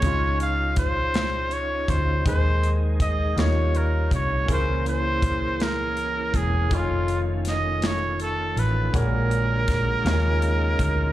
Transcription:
<<
  \new Staff \with { instrumentName = "Trumpet" } { \time 6/8 \key des \lydian \tempo 4. = 54 des''8 f''8 c''4 des''8 c''8 | c''8 r8 ees''8 des''8 bes'8 des''8 | c''8 c''4 bes'4 aes'8 | f'8 r8 ees''8 cis''8 a'8 ces''8 |
bes'2. | }
  \new Staff \with { instrumentName = "Grand piano" } { \time 6/8 \key des \lydian <aes des' ees' f' c'''>2. | <ees' aes' c''>4. <bes ees' f' g' des''>4. | <bes des' fes' aes' bes'>2. | <a ees' f' cis'' gis''>2. |
<bes d' fis' aes' cis''>4. <bes ees' f' g' aes' des''>4. | }
  \new Staff \with { instrumentName = "Grand piano" } { \clef bass \time 6/8 \key des \lydian des4. r4. | ees4. ees4. | des4. r4. | r2. |
bes,4. des4. | }
  \new Staff \with { instrumentName = "Tonewheel organ" } { \time 6/8 \key des \lydian << { f'2. | aes'4. f'4. | aes'2. | f'2. |
fis'4. f'4. | } \\ { des'2. | r4. des'4.~ | des'2.~ | des'2. |
bes4. des'4. | } >> }
  \new Staff \with { instrumentName = "Tonewheel organ" } { \clef bass \time 6/8 \key des \lydian << { r2. | aes4. g4. | bes2. | a2. |
aes2. | } \\ { ees'2.~ | ees'2. | fes2. | ees2. |
d4. ees'4. | } >> }
  \new Staff \with { instrumentName = "Fingered electric bass" } { \clef bass \time 6/8 \key des \lydian des,2~ des,8 d,8 | ees,4. ees,4 c,8 | des,2~ des,8 fes,,8 | f,,2~ f,,8 a,,8 |
bes,,4. ees,4 d,8 | }
  \new DrumStaff \with { instrumentName = "Drums" } \drummode { \time 6/8 <hh bd>8 hh8 <hh bd>8 <hh sn>8 hh8 <hh bd>8 | <hh bd>8 hh8 <hh bd>8 <hh sn>8 hh8 <hh bd>8 | <hh bd>8 hh8 <hh bd>8 <hh sn>8 hh8 <hh bd>8 | <hh bd>8 hh8 <hh sn>8 <hh sn>8 hh8 hh8 |
<hh bd>8 hh8 <hh bd sn>8 <hh sn>8 hh8 <hh bd>8 | }
>>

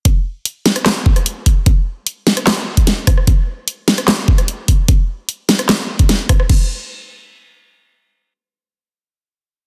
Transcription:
\new DrumStaff \with { instrumentName = "Drums" } \drummode { \time 4/4 \tempo 4 = 149 <hh bd>4 hh8 <hho sn>16 <hh ss>16 <hc hh sn>8 bd16 <hh ss>16 hh8 <hho bd>8 | <hh bd>4 hh8 <hho sn>16 <hh ss>16 <hc hh sn>8. <hh bd>16 <hh sn>8 <hho bd ss>16 ss16 | <hh bd>4 hh8 <hho sn>16 <hh ss>16 <hc hh sn>8 bd16 <hh ss>16 hh8 <hho bd>8 | <hh bd>4 hh8 <hho sn>16 <hh ss>16 <hc hh sn>8. <hh bd>16 <hh sn>8 <hho bd ss>16 ss16 |
<cymc bd>4 r4 r4 r4 | r4 r4 r4 r4 | }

